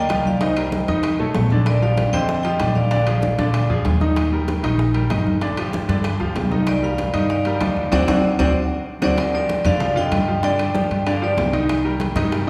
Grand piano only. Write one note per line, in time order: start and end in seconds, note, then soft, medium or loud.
0.09 0.35 F3 medium
0.09 0.35 F4 medium
0.09 0.35 F5 medium
0.40 0.53 D#3 medium
0.40 0.54 D#4 medium
0.40 0.54 D#5 medium
0.57 0.83 G3 medium
0.57 0.83 G4 medium
0.57 0.83 A#4 medium
0.88 1.14 D#3 medium
0.88 1.14 D#4 medium
0.88 1.14 D#5 medium
1.20 1.45 A3 medium
1.20 1.45 A4 medium
1.20 1.45 C#5 medium
1.51 1.77 D3 medium
1.51 1.77 D4 medium
1.51 1.77 D5 medium
1.82 2.08 F3 medium
1.82 2.08 F4 medium
1.82 2.08 G4 medium
2.13 2.39 D3 medium
2.13 2.39 C4 medium
2.13 2.39 C5 medium
2.45 2.57 F3 medium
2.45 2.57 F4 medium
2.45 2.58 G4 medium
2.60 2.86 D3 medium
2.60 2.86 D4 medium
2.60 2.86 D5 medium
2.91 3.04 D3 medium
2.91 3.04 D4 medium
2.91 3.04 D5 medium
3.07 3.33 F3 medium
3.07 3.33 F4 medium
3.07 3.33 G#4 medium
3.38 3.64 D3 medium
3.38 3.64 D4 medium
3.38 3.64 D5 medium
3.70 3.95 F3 medium
3.70 3.95 F4 medium
3.70 3.96 G#4 medium
4.01 4.27 D#3 medium
4.01 4.27 D#4 medium
4.01 4.27 D#5 medium
4.32 4.58 G3 medium
4.32 4.58 G4 medium
4.32 4.58 A#4 medium
4.63 4.89 D#3 medium
4.63 4.89 D#4 medium
4.63 4.90 D#5 medium
4.94 5.07 G3 medium
4.94 5.07 G4 medium
4.94 5.08 A#4 medium
5.10 5.36 D#3 medium
5.10 5.36 D#4 medium
5.10 5.37 D#5 medium
5.42 5.55 D3 medium
5.42 5.55 D4 medium
5.42 5.55 D5 medium
5.57 5.83 F3 medium
5.57 5.83 F4 medium
5.57 5.83 G4 medium
5.88 6.14 D3 medium
5.88 6.15 D4 medium
5.88 6.15 D5 medium
6.20 6.46 F3 medium
6.20 6.46 F4 medium
6.20 6.46 G4 medium
6.51 6.77 D#3 medium
6.51 6.77 D#4 medium
6.51 6.78 D#5 medium
6.82 7.08 G3 medium
6.82 7.09 G4 medium
6.82 7.09 A#4 medium
7.14 7.40 D#3 medium
7.14 7.40 D#4 medium
7.14 7.40 D#5 medium
7.46 7.59 G3 medium
7.46 7.59 G4 medium
7.46 7.59 A#4 medium
7.60 7.87 F3 medium
7.60 7.87 D#4 medium
7.60 7.87 D5 medium
7.92 8.02 C4 loud
7.92 8.02 D4 loud
7.92 8.02 F#4 medium
8.08 8.18 C4 medium
8.08 8.18 D4 medium
8.08 8.18 F#4 medium
8.39 8.49 C4 medium
8.39 8.49 D4 medium
8.39 8.49 F#4 medium
9.02 9.12 C4 medium
9.02 9.12 D4 medium
9.02 9.12 F#4 medium
9.34 9.60 F3 medium
9.34 9.60 F4 medium
9.34 9.60 G4 medium
9.66 9.78 D3 medium
9.66 9.78 D4 medium
9.66 9.78 D5 medium
9.81 9.94 F3 medium
9.81 9.94 F4 medium
9.81 9.94 G4 medium
9.95 10.22 D3 medium
9.95 10.22 F4 medium
9.95 10.22 F5 medium
10.28 10.41 F3 medium
10.28 10.41 F4 medium
10.28 10.41 G4 medium
10.43 10.69 D3 medium
10.43 10.69 D4 medium
10.43 10.69 D5 medium
10.74 11.00 F3 medium
10.74 11.01 F4 medium
10.74 11.01 G4 medium
11.06 11.19 D3 medium
11.06 11.19 D4 medium
11.06 11.19 D5 medium
11.22 11.48 F3 medium
11.22 11.48 F4 medium
11.22 11.48 G4 medium
11.53 11.79 D#3 medium
11.53 11.79 D#4 medium
11.53 11.79 D#5 medium
11.85 12.10 G3 medium
11.85 12.11 G4 medium
11.85 12.11 A#4 medium
12.16 12.29 D#3 medium
12.16 12.29 D#4 medium
12.16 12.29 D#5 medium
12.31 12.44 G3 medium
12.31 12.45 G4 medium
12.31 12.45 A#4 medium